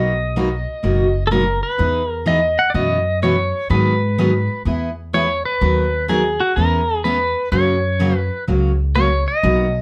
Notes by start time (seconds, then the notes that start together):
Already playing: B1 B2 F#3 A#3 D#4 F#4 D#5
0.36 B2 F#3 A#3 D#4 F#4
0.83 F#1 B2 F#3 A#3 D#4 F#4
1.27 B2 F#3 A4
1.32 A#3 D#4 F#4 A#4
1.63 B4
1.78 E2 E3 B3 D#4 G#4
2.09 A#4
2.26 E3 B3 D#4 G#4 D#5
2.59 F#5
2.70 D5
2.74 F#2 B2 E3 B3 C#4 F#4 D#5
3.22 B2 E3 B3 C#4 F#4 C#5
3.69 G#2 D#3 F#3 B3 D#4 G#4 B4
4.18 D#3 F#3 B3 D#4 G#4
4.65 E2 E3 B3 E4 G#4
5.13 E3 B3 E4 G#4 C#5
5.45 B4
5.61 D#2 D#3 F#3 B3 D#4 A#4
6.08 D#3 F#3 B3 D#4 G#4 A#4
6.40 F#4
6.56 E2 E3 B3 C#4 G#4 A#4
7.04 E3 B3 C#4 G#4 B4
7.52 F#2 C#3 F#3 A#3 C#4 F#4 C#5
8.00 C#3 F#3 A#3 C#4 F#4
8.17 B4
8.47 C#2 C#3 F#3 A#3 C#4 F#4
8.95 C#3 F#3 A#3 C#4 F#4 C#5
9.28 D#5
9.43 B1 B2 F#3 A#3 D#4 F#4